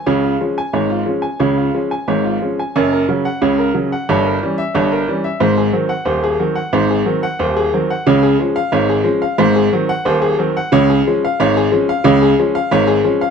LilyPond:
<<
  \new Staff \with { instrumentName = "Upright piano" } { \time 2/4 \key des \major \tempo 4 = 90 des''16 f'16 aes16 aes''16 des''16 f'16 aes16 aes''16 | des''16 f'16 aes16 aes''16 des''16 f'16 aes16 aes''16 | des''16 bes'16 des16 ges''16 des''16 bes'16 des16 ges''16 | des''16 bes'16 g16 e''16 des''16 bes'16 g16 e''16 |
c''16 aes'16 ees16 ges''16 c''16 aes'16 ees16 ges''16 | c''16 aes'16 ees16 ges''16 c''16 aes'16 ees16 ges''16 | des''16 aes'16 aes16 f''16 des''16 aes'16 aes16 f''16 | c''16 aes'16 ees16 ges''16 c''16 aes'16 ees16 ges''16 |
des''16 aes'16 aes16 f''16 des''16 aes'16 aes16 f''16 | des''16 aes'16 aes16 f''16 des''16 aes'16 aes16 f''16 | }
  \new Staff \with { instrumentName = "Upright piano" } { \clef bass \time 2/4 \key des \major <des, des>8 <f des'>8 <aes,, aes,>8 <f des'>8 | <des, des>8 <f des'>8 <aes,, aes,>8 <f des'>8 | <ges,, ges,>8 <ges des'>8 <des, des>8 <ges des'>8 | <g,, g,>8 <e des'>8 <g,, g,>8 <e des'>8 |
<aes,, aes,>8 <ges c'>8 <ees,, ees,>8 <ges c'>8 | <aes,, aes,>8 <ges c'>8 <ees,, ees,>8 <ges c'>8 | <des, des>8 <f des'>8 <aes,, aes,>8 <f des'>8 | <aes,, aes,>8 <ges c'>8 <ees,, ees,>8 <ges c'>8 |
<des, des>8 <f des'>8 <aes,, aes,>8 <f des'>8 | <des, des>8 <f des'>8 <aes,, aes,>8 <f des'>8 | }
>>